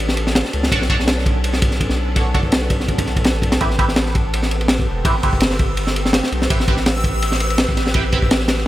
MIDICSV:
0, 0, Header, 1, 6, 480
1, 0, Start_track
1, 0, Tempo, 361446
1, 952, Time_signature, 4, 2, 24, 8
1, 11519, End_track
2, 0, Start_track
2, 0, Title_t, "Synth texture"
2, 0, Program_c, 0, 99
2, 4794, Note_on_c, 0, 88, 85
2, 11519, Note_off_c, 0, 88, 0
2, 11519, End_track
3, 0, Start_track
3, 0, Title_t, "Synth stab"
3, 0, Program_c, 1, 62
3, 954, Note_on_c, 1, 62, 88
3, 954, Note_on_c, 1, 66, 82
3, 954, Note_on_c, 1, 69, 81
3, 954, Note_on_c, 1, 73, 93
3, 1075, Note_off_c, 1, 62, 0
3, 1075, Note_off_c, 1, 66, 0
3, 1075, Note_off_c, 1, 69, 0
3, 1075, Note_off_c, 1, 73, 0
3, 1192, Note_on_c, 1, 62, 96
3, 1192, Note_on_c, 1, 66, 88
3, 1192, Note_on_c, 1, 69, 85
3, 1192, Note_on_c, 1, 73, 103
3, 1268, Note_off_c, 1, 62, 0
3, 1268, Note_off_c, 1, 66, 0
3, 1268, Note_off_c, 1, 69, 0
3, 1268, Note_off_c, 1, 73, 0
3, 2872, Note_on_c, 1, 66, 81
3, 2873, Note_on_c, 1, 62, 88
3, 2873, Note_on_c, 1, 69, 81
3, 2873, Note_on_c, 1, 73, 94
3, 2994, Note_off_c, 1, 66, 0
3, 2994, Note_off_c, 1, 69, 0
3, 2995, Note_off_c, 1, 62, 0
3, 2995, Note_off_c, 1, 73, 0
3, 3112, Note_on_c, 1, 62, 98
3, 3112, Note_on_c, 1, 66, 89
3, 3112, Note_on_c, 1, 69, 87
3, 3112, Note_on_c, 1, 73, 107
3, 3188, Note_off_c, 1, 62, 0
3, 3188, Note_off_c, 1, 66, 0
3, 3188, Note_off_c, 1, 69, 0
3, 3188, Note_off_c, 1, 73, 0
3, 4791, Note_on_c, 1, 67, 77
3, 4792, Note_on_c, 1, 60, 89
3, 4792, Note_on_c, 1, 64, 80
3, 4792, Note_on_c, 1, 71, 93
3, 4913, Note_off_c, 1, 67, 0
3, 4914, Note_off_c, 1, 60, 0
3, 4914, Note_off_c, 1, 64, 0
3, 4914, Note_off_c, 1, 71, 0
3, 5030, Note_on_c, 1, 67, 87
3, 5031, Note_on_c, 1, 64, 85
3, 5031, Note_on_c, 1, 71, 104
3, 5032, Note_on_c, 1, 60, 95
3, 5107, Note_off_c, 1, 64, 0
3, 5107, Note_off_c, 1, 67, 0
3, 5108, Note_off_c, 1, 60, 0
3, 5108, Note_off_c, 1, 71, 0
3, 6711, Note_on_c, 1, 60, 87
3, 6711, Note_on_c, 1, 64, 80
3, 6711, Note_on_c, 1, 67, 78
3, 6711, Note_on_c, 1, 71, 94
3, 6833, Note_off_c, 1, 60, 0
3, 6833, Note_off_c, 1, 64, 0
3, 6833, Note_off_c, 1, 67, 0
3, 6833, Note_off_c, 1, 71, 0
3, 6952, Note_on_c, 1, 60, 100
3, 6952, Note_on_c, 1, 64, 90
3, 6952, Note_on_c, 1, 71, 108
3, 6953, Note_on_c, 1, 67, 87
3, 7028, Note_off_c, 1, 60, 0
3, 7028, Note_off_c, 1, 64, 0
3, 7028, Note_off_c, 1, 67, 0
3, 7028, Note_off_c, 1, 71, 0
3, 8634, Note_on_c, 1, 60, 84
3, 8634, Note_on_c, 1, 64, 79
3, 8634, Note_on_c, 1, 67, 78
3, 8634, Note_on_c, 1, 71, 94
3, 8755, Note_off_c, 1, 60, 0
3, 8755, Note_off_c, 1, 64, 0
3, 8755, Note_off_c, 1, 67, 0
3, 8755, Note_off_c, 1, 71, 0
3, 8874, Note_on_c, 1, 60, 96
3, 8874, Note_on_c, 1, 64, 90
3, 8874, Note_on_c, 1, 67, 85
3, 8874, Note_on_c, 1, 71, 106
3, 8949, Note_off_c, 1, 60, 0
3, 8949, Note_off_c, 1, 64, 0
3, 8949, Note_off_c, 1, 67, 0
3, 8949, Note_off_c, 1, 71, 0
3, 10552, Note_on_c, 1, 60, 86
3, 10552, Note_on_c, 1, 64, 82
3, 10552, Note_on_c, 1, 67, 78
3, 10552, Note_on_c, 1, 71, 95
3, 10674, Note_off_c, 1, 60, 0
3, 10674, Note_off_c, 1, 64, 0
3, 10674, Note_off_c, 1, 67, 0
3, 10674, Note_off_c, 1, 71, 0
3, 10794, Note_on_c, 1, 60, 94
3, 10794, Note_on_c, 1, 64, 88
3, 10794, Note_on_c, 1, 67, 87
3, 10794, Note_on_c, 1, 71, 105
3, 10869, Note_off_c, 1, 60, 0
3, 10869, Note_off_c, 1, 64, 0
3, 10869, Note_off_c, 1, 67, 0
3, 10869, Note_off_c, 1, 71, 0
3, 11519, End_track
4, 0, Start_track
4, 0, Title_t, "String machine"
4, 0, Program_c, 2, 50
4, 0, Note_on_c, 2, 59, 80
4, 0, Note_on_c, 2, 61, 75
4, 0, Note_on_c, 2, 62, 76
4, 0, Note_on_c, 2, 69, 88
4, 4738, Note_off_c, 2, 62, 0
4, 4739, Note_off_c, 2, 61, 0
4, 4790, Note_on_c, 2, 60, 73
4, 4790, Note_on_c, 2, 67, 74
4, 8578, Note_off_c, 2, 69, 0
4, 8634, Note_on_c, 2, 71, 87
4, 11519, Note_off_c, 2, 59, 0
4, 11519, Note_off_c, 2, 60, 0
4, 11519, Note_off_c, 2, 67, 0
4, 11519, Note_off_c, 2, 71, 0
4, 11519, End_track
5, 0, Start_track
5, 0, Title_t, "Sub bass"
5, 0, Program_c, 3, 38
5, 0, Note_on_c, 3, 33, 81
5, 576, Note_off_c, 3, 33, 0
5, 713, Note_on_c, 3, 37, 93
5, 930, Note_off_c, 3, 37, 0
5, 951, Note_on_c, 3, 35, 98
5, 1298, Note_off_c, 3, 35, 0
5, 1321, Note_on_c, 3, 35, 99
5, 2500, Note_off_c, 3, 35, 0
5, 2518, Note_on_c, 3, 35, 88
5, 4429, Note_off_c, 3, 35, 0
5, 4437, Note_on_c, 3, 33, 101
5, 4533, Note_off_c, 3, 33, 0
5, 4541, Note_on_c, 3, 35, 103
5, 4764, Note_off_c, 3, 35, 0
5, 4795, Note_on_c, 3, 33, 103
5, 6472, Note_on_c, 3, 28, 103
5, 6492, Note_off_c, 3, 33, 0
5, 6689, Note_off_c, 3, 28, 0
5, 6704, Note_on_c, 3, 33, 97
5, 6925, Note_off_c, 3, 33, 0
5, 6950, Note_on_c, 3, 31, 84
5, 8258, Note_off_c, 3, 31, 0
5, 8393, Note_on_c, 3, 35, 92
5, 8610, Note_off_c, 3, 35, 0
5, 8635, Note_on_c, 3, 33, 97
5, 8980, Note_off_c, 3, 33, 0
5, 9001, Note_on_c, 3, 33, 102
5, 10180, Note_off_c, 3, 33, 0
5, 10207, Note_on_c, 3, 33, 89
5, 11519, Note_off_c, 3, 33, 0
5, 11519, End_track
6, 0, Start_track
6, 0, Title_t, "Drums"
6, 113, Note_on_c, 9, 38, 49
6, 225, Note_on_c, 9, 51, 69
6, 246, Note_off_c, 9, 38, 0
6, 356, Note_on_c, 9, 38, 45
6, 358, Note_off_c, 9, 51, 0
6, 469, Note_off_c, 9, 38, 0
6, 469, Note_on_c, 9, 38, 109
6, 476, Note_on_c, 9, 51, 85
6, 595, Note_off_c, 9, 38, 0
6, 595, Note_on_c, 9, 38, 54
6, 609, Note_off_c, 9, 51, 0
6, 706, Note_on_c, 9, 51, 71
6, 727, Note_off_c, 9, 38, 0
6, 839, Note_off_c, 9, 51, 0
6, 840, Note_on_c, 9, 38, 60
6, 952, Note_on_c, 9, 36, 105
6, 957, Note_on_c, 9, 51, 93
6, 973, Note_off_c, 9, 38, 0
6, 1084, Note_off_c, 9, 36, 0
6, 1086, Note_on_c, 9, 38, 47
6, 1090, Note_off_c, 9, 51, 0
6, 1191, Note_on_c, 9, 36, 97
6, 1191, Note_on_c, 9, 51, 72
6, 1219, Note_off_c, 9, 38, 0
6, 1324, Note_off_c, 9, 36, 0
6, 1324, Note_off_c, 9, 51, 0
6, 1324, Note_on_c, 9, 38, 42
6, 1429, Note_off_c, 9, 38, 0
6, 1429, Note_on_c, 9, 38, 116
6, 1429, Note_on_c, 9, 51, 83
6, 1562, Note_off_c, 9, 38, 0
6, 1562, Note_off_c, 9, 51, 0
6, 1574, Note_on_c, 9, 38, 39
6, 1672, Note_on_c, 9, 36, 94
6, 1674, Note_on_c, 9, 51, 74
6, 1706, Note_off_c, 9, 38, 0
6, 1805, Note_off_c, 9, 36, 0
6, 1807, Note_off_c, 9, 51, 0
6, 1911, Note_on_c, 9, 51, 96
6, 2033, Note_on_c, 9, 38, 44
6, 2044, Note_off_c, 9, 51, 0
6, 2150, Note_on_c, 9, 51, 84
6, 2154, Note_on_c, 9, 36, 105
6, 2166, Note_off_c, 9, 38, 0
6, 2272, Note_on_c, 9, 38, 39
6, 2282, Note_off_c, 9, 51, 0
6, 2287, Note_off_c, 9, 36, 0
6, 2396, Note_on_c, 9, 36, 88
6, 2398, Note_on_c, 9, 51, 68
6, 2405, Note_off_c, 9, 38, 0
6, 2517, Note_on_c, 9, 38, 42
6, 2529, Note_off_c, 9, 36, 0
6, 2531, Note_off_c, 9, 51, 0
6, 2650, Note_off_c, 9, 38, 0
6, 2868, Note_on_c, 9, 51, 88
6, 2869, Note_on_c, 9, 36, 105
6, 3001, Note_off_c, 9, 51, 0
6, 3002, Note_off_c, 9, 36, 0
6, 3113, Note_on_c, 9, 51, 67
6, 3115, Note_on_c, 9, 36, 100
6, 3227, Note_off_c, 9, 36, 0
6, 3227, Note_on_c, 9, 36, 103
6, 3246, Note_off_c, 9, 51, 0
6, 3344, Note_on_c, 9, 51, 83
6, 3354, Note_on_c, 9, 38, 112
6, 3360, Note_off_c, 9, 36, 0
6, 3477, Note_off_c, 9, 51, 0
6, 3480, Note_off_c, 9, 38, 0
6, 3480, Note_on_c, 9, 38, 44
6, 3585, Note_on_c, 9, 51, 82
6, 3590, Note_on_c, 9, 36, 94
6, 3613, Note_off_c, 9, 38, 0
6, 3717, Note_off_c, 9, 51, 0
6, 3721, Note_on_c, 9, 38, 39
6, 3723, Note_off_c, 9, 36, 0
6, 3829, Note_on_c, 9, 51, 59
6, 3830, Note_on_c, 9, 36, 85
6, 3854, Note_off_c, 9, 38, 0
6, 3962, Note_off_c, 9, 36, 0
6, 3962, Note_off_c, 9, 51, 0
6, 3962, Note_on_c, 9, 36, 101
6, 3964, Note_on_c, 9, 51, 85
6, 4068, Note_on_c, 9, 38, 37
6, 4095, Note_off_c, 9, 36, 0
6, 4096, Note_off_c, 9, 51, 0
6, 4200, Note_off_c, 9, 38, 0
6, 4201, Note_on_c, 9, 36, 94
6, 4203, Note_on_c, 9, 51, 59
6, 4307, Note_off_c, 9, 51, 0
6, 4307, Note_on_c, 9, 51, 84
6, 4321, Note_on_c, 9, 38, 100
6, 4334, Note_off_c, 9, 36, 0
6, 4432, Note_off_c, 9, 38, 0
6, 4432, Note_on_c, 9, 38, 45
6, 4440, Note_off_c, 9, 51, 0
6, 4542, Note_on_c, 9, 36, 90
6, 4557, Note_on_c, 9, 51, 60
6, 4564, Note_off_c, 9, 38, 0
6, 4674, Note_on_c, 9, 38, 101
6, 4675, Note_off_c, 9, 36, 0
6, 4678, Note_off_c, 9, 51, 0
6, 4678, Note_on_c, 9, 51, 79
6, 4788, Note_off_c, 9, 51, 0
6, 4788, Note_on_c, 9, 51, 82
6, 4796, Note_on_c, 9, 36, 109
6, 4807, Note_off_c, 9, 38, 0
6, 4919, Note_on_c, 9, 38, 41
6, 4921, Note_off_c, 9, 51, 0
6, 4929, Note_off_c, 9, 36, 0
6, 5030, Note_on_c, 9, 36, 95
6, 5031, Note_on_c, 9, 51, 73
6, 5051, Note_off_c, 9, 38, 0
6, 5158, Note_on_c, 9, 38, 45
6, 5163, Note_off_c, 9, 36, 0
6, 5163, Note_off_c, 9, 51, 0
6, 5260, Note_on_c, 9, 51, 89
6, 5262, Note_off_c, 9, 38, 0
6, 5262, Note_on_c, 9, 38, 111
6, 5392, Note_off_c, 9, 38, 0
6, 5392, Note_on_c, 9, 38, 39
6, 5393, Note_off_c, 9, 51, 0
6, 5509, Note_on_c, 9, 51, 71
6, 5515, Note_on_c, 9, 36, 94
6, 5525, Note_off_c, 9, 38, 0
6, 5642, Note_off_c, 9, 51, 0
6, 5647, Note_off_c, 9, 36, 0
6, 5757, Note_on_c, 9, 51, 94
6, 5878, Note_on_c, 9, 38, 41
6, 5890, Note_off_c, 9, 51, 0
6, 5991, Note_on_c, 9, 51, 65
6, 6011, Note_off_c, 9, 38, 0
6, 6119, Note_off_c, 9, 51, 0
6, 6119, Note_on_c, 9, 51, 45
6, 6219, Note_on_c, 9, 38, 116
6, 6229, Note_off_c, 9, 51, 0
6, 6229, Note_on_c, 9, 51, 86
6, 6352, Note_off_c, 9, 38, 0
6, 6362, Note_off_c, 9, 51, 0
6, 6365, Note_on_c, 9, 36, 88
6, 6498, Note_off_c, 9, 36, 0
6, 6704, Note_on_c, 9, 36, 117
6, 6705, Note_on_c, 9, 51, 90
6, 6837, Note_off_c, 9, 36, 0
6, 6838, Note_off_c, 9, 51, 0
6, 6946, Note_on_c, 9, 51, 76
6, 6950, Note_on_c, 9, 36, 94
6, 7077, Note_off_c, 9, 36, 0
6, 7077, Note_on_c, 9, 36, 103
6, 7079, Note_off_c, 9, 51, 0
6, 7177, Note_on_c, 9, 51, 99
6, 7194, Note_on_c, 9, 38, 108
6, 7210, Note_off_c, 9, 36, 0
6, 7309, Note_off_c, 9, 51, 0
6, 7313, Note_off_c, 9, 38, 0
6, 7313, Note_on_c, 9, 38, 50
6, 7425, Note_on_c, 9, 51, 66
6, 7430, Note_on_c, 9, 36, 105
6, 7446, Note_off_c, 9, 38, 0
6, 7558, Note_off_c, 9, 51, 0
6, 7562, Note_off_c, 9, 36, 0
6, 7663, Note_on_c, 9, 51, 90
6, 7795, Note_on_c, 9, 38, 46
6, 7796, Note_off_c, 9, 51, 0
6, 7917, Note_on_c, 9, 51, 74
6, 7927, Note_off_c, 9, 38, 0
6, 8041, Note_on_c, 9, 38, 50
6, 8050, Note_off_c, 9, 51, 0
6, 8141, Note_off_c, 9, 38, 0
6, 8141, Note_on_c, 9, 38, 126
6, 8151, Note_on_c, 9, 51, 98
6, 8274, Note_off_c, 9, 38, 0
6, 8279, Note_on_c, 9, 38, 63
6, 8284, Note_off_c, 9, 51, 0
6, 8397, Note_on_c, 9, 51, 64
6, 8412, Note_off_c, 9, 38, 0
6, 8521, Note_on_c, 9, 38, 57
6, 8530, Note_off_c, 9, 51, 0
6, 8635, Note_on_c, 9, 36, 111
6, 8635, Note_on_c, 9, 51, 99
6, 8654, Note_off_c, 9, 38, 0
6, 8766, Note_on_c, 9, 38, 45
6, 8768, Note_off_c, 9, 36, 0
6, 8768, Note_off_c, 9, 51, 0
6, 8868, Note_on_c, 9, 36, 95
6, 8868, Note_on_c, 9, 51, 70
6, 8899, Note_off_c, 9, 38, 0
6, 8988, Note_on_c, 9, 38, 42
6, 9000, Note_off_c, 9, 51, 0
6, 9001, Note_off_c, 9, 36, 0
6, 9110, Note_on_c, 9, 51, 94
6, 9114, Note_off_c, 9, 38, 0
6, 9114, Note_on_c, 9, 38, 116
6, 9243, Note_off_c, 9, 51, 0
6, 9247, Note_off_c, 9, 38, 0
6, 9249, Note_on_c, 9, 38, 36
6, 9347, Note_on_c, 9, 36, 97
6, 9350, Note_on_c, 9, 51, 71
6, 9382, Note_off_c, 9, 38, 0
6, 9480, Note_off_c, 9, 36, 0
6, 9483, Note_off_c, 9, 51, 0
6, 9593, Note_on_c, 9, 51, 93
6, 9718, Note_on_c, 9, 38, 44
6, 9725, Note_off_c, 9, 51, 0
6, 9830, Note_on_c, 9, 51, 77
6, 9850, Note_off_c, 9, 38, 0
6, 9963, Note_off_c, 9, 51, 0
6, 9963, Note_on_c, 9, 51, 48
6, 10066, Note_off_c, 9, 51, 0
6, 10066, Note_on_c, 9, 51, 96
6, 10068, Note_on_c, 9, 38, 116
6, 10199, Note_off_c, 9, 51, 0
6, 10201, Note_off_c, 9, 38, 0
6, 10208, Note_on_c, 9, 36, 102
6, 10315, Note_on_c, 9, 38, 50
6, 10319, Note_on_c, 9, 51, 71
6, 10340, Note_off_c, 9, 36, 0
6, 10445, Note_off_c, 9, 38, 0
6, 10445, Note_on_c, 9, 38, 54
6, 10452, Note_off_c, 9, 51, 0
6, 10544, Note_on_c, 9, 51, 86
6, 10555, Note_on_c, 9, 36, 110
6, 10578, Note_off_c, 9, 38, 0
6, 10677, Note_off_c, 9, 51, 0
6, 10688, Note_off_c, 9, 36, 0
6, 10788, Note_on_c, 9, 51, 66
6, 10793, Note_on_c, 9, 36, 98
6, 10921, Note_off_c, 9, 51, 0
6, 10922, Note_off_c, 9, 36, 0
6, 10922, Note_on_c, 9, 36, 103
6, 11033, Note_on_c, 9, 51, 100
6, 11038, Note_on_c, 9, 38, 127
6, 11055, Note_off_c, 9, 36, 0
6, 11161, Note_off_c, 9, 38, 0
6, 11161, Note_on_c, 9, 38, 49
6, 11166, Note_off_c, 9, 51, 0
6, 11261, Note_off_c, 9, 38, 0
6, 11261, Note_on_c, 9, 38, 93
6, 11266, Note_on_c, 9, 51, 77
6, 11392, Note_off_c, 9, 38, 0
6, 11392, Note_on_c, 9, 38, 36
6, 11399, Note_off_c, 9, 51, 0
6, 11519, Note_off_c, 9, 38, 0
6, 11519, End_track
0, 0, End_of_file